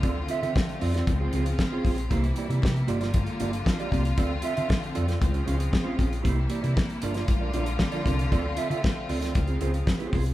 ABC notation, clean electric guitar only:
X:1
M:4/4
L:1/16
Q:1/4=116
K:Dm
V:1 name="Clean electric guitar"
[CFAd] z [CFAe] [CFAe] z2 [CFAd] [CFAd] z [CF_Ac] [CFAc] z2 [CFAc] [CFAc] z | [B,EGc] z [B,EGd] [B,EGd] z2 [B,FGd] [B,FGd] z2 [B,FGd] z2 [B,FGd] [B,FGd] z | [CFAd] z [CFAe] [CFAe] z2 [CFAd] [CFAd] z [_A,_DFc] [A,DFc] z2 [A,DFc] [A,DFc] z | [B,EGc] z [B,EGd] [B,EGd] z2 [DFBd] [DFBd] z [DFBd] [DFBd] z2 [DFBd] [DFBd] z |
[CFAd] z [CFAe] [CFAe] z2 [CFAd] [CFAd] z [CF_Ac] [CFAc] z2 [CFAc] [CFAc] z |]